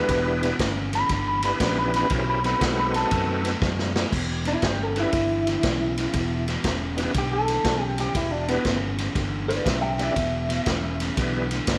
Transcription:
Already playing: tonewheel organ B3 D4 E4 G4 B4, electric slide guitar B4
0.08 fingered electric bass E1, overdriven electric guitar E2 B2, kick, snare, ride
0.43 overdriven electric guitar E2 B2, snare, ride
0.59 fingered electric bass G1, overdriven electric guitar E2 C#3, kick, snare, ride
0.93 overdriven electric guitar E2 C#3, electric slide guitar B5, snare, ride
1.09 fingered electric bass G1, overdriven electric guitar E2 D3, kick, snare, ride
1.28 electric slide guitar B5
1.42 overdriven electric guitar E2 D3, tonewheel organ B3 D4 E4 G4 B4, electric slide guitar B5, snare, ride
1.60 fingered electric bass A#1, overdriven electric guitar E2 C#3, kick, snare, ride
1.79 electric slide guitar B5
1.94 overdriven electric guitar E2 C#3, electric slide guitar B5, snare, ride
2.10 fingered electric bass B1, overdriven electric guitar B2 F#3, tonewheel organ C#4 E4 G4 A#4 C5, kick, snare, ride
2.30 electric slide guitar B5
2.43 overdriven electric guitar B2 F#3, tonewheel organ C4 D#4 F#4 A4 B4, electric slide guitar B5, snare, ride
2.61 fingered electric bass B1, overdriven electric guitar B2 G#3, kick, snare, ride
2.80 electric slide guitar B5
2.94 overdriven electric guitar B2 G#3, electric slide guitar A5, snare, ride
3.11 fingered electric bass F#2, overdriven electric guitar B2 A3, kick, snare, ride
3.44 overdriven electric guitar B2 A3, snare, ride
3.62 fingered electric bass F#2, overdriven electric guitar B2 G#3, kick, snare
3.79 snare
3.96 overdriven electric guitar B2 G#3, snare
4.12 fingered electric bass E1, overdriven electric guitar E2 B2, kick, snare, crash
4.45 overdriven electric guitar E2 B2, clean electric guitar E4, snare, ride
4.62 fingered electric bass G1, overdriven electric guitar E2 C#3, clean electric guitar G4, kick, snare, ride
4.83 clean electric guitar A4
4.96 overdriven electric guitar E2 C#3, tonewheel organ B3 D4 E4 G4 B4, clean electric guitar E4, snare, ride
5.13 fingered electric bass G1, overdriven electric guitar E2 D3, kick, snare, ride
5.47 overdriven electric guitar E2 D3, snare, ride
5.63 fingered electric bass B1, overdriven electric guitar E2 C#3, kick, snare, ride
5.98 overdriven electric guitar E2 C#3, snare, ride
6.13 fingered electric bass E1, overdriven electric guitar E2 B2, kick, snare, ride
6.48 overdriven electric guitar E2 B2, snare, ride
6.64 fingered electric bass E1, overdriven electric guitar E2 C#3, kick, snare, ride
6.97 overdriven electric guitar E2 C#3, tonewheel organ B3 D4 E4 G4 B4, snare, ride
7.14 fingered electric bass B1, overdriven electric guitar E2 D3, kick, snare, ride
7.18 clean electric guitar G4
7.33 clean electric guitar A4
7.48 overdriven electric guitar E2 D3, snare, ride
7.64 fingered electric bass B1, overdriven electric guitar E2 C#3, kick, snare, ride
7.82 clean electric guitar G4
7.98 overdriven electric guitar E2 C#3, clean electric guitar G4, snare, ride
8.14 fingered electric bass E1, overdriven electric guitar E2 B2, clean electric guitar E4, kick, snare, ride
8.31 clean electric guitar D4
8.48 overdriven electric guitar E2 B2, clean electric guitar B3, tonewheel organ B3 D4 E4 G4 B4, snare, ride
8.64 fingered electric bass G1, overdriven electric guitar E2 C#3, kick, snare, ride
8.98 overdriven electric guitar E2 C#3, snare, ride
9.15 fingered electric bass G1, overdriven electric guitar E2 D3, kick, snare, ride
9.48 overdriven electric guitar E2 D3, clean electric guitar B4 D5, snare, ride
9.64 fingered electric bass B1, overdriven electric guitar E2 C#3, clean electric guitar G4 E5, kick, snare, ride
9.81 clean electric guitar E5 G5
9.98 overdriven electric guitar E2 C#3, tonewheel organ B3 D4 E4 G4 D5, clean electric guitar E5, snare, ride
10.16 fingered electric bass E1, overdriven electric guitar E2 B2, kick, snare, ride
10.49 overdriven electric guitar E2 B2, snare, ride
10.66 fingered electric bass E1, overdriven electric guitar E2 C#3, kick, snare, ride
11.00 overdriven electric guitar E2 C#3, snare, ride
11.17 fingered electric bass B1, overdriven electric guitar E2 D3, tonewheel organ B3 D4 E4 G4 B4, kick, snare, ride
11.51 overdriven electric guitar E2 D3, snare, ride
11.67 fingered electric bass G1, overdriven electric guitar E2 C#3, kick, snare, ride

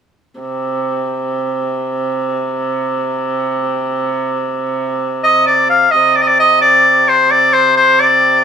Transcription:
0.40 hurdy-gurdy C3
5.24 shawm D#5
5.47 shawm D5
5.70 shawm F5
5.91 hurdy-gurdy C3, shawm D#5
6.16 shawm D5
6.22 shawm D#5
6.28 shawm D5
6.40 shawm D#5
6.62 shawm D5
7.09 shawm C5
7.31 shawm D5
7.53 shawm C5
7.77 shawm C5
8.00 shawm D5

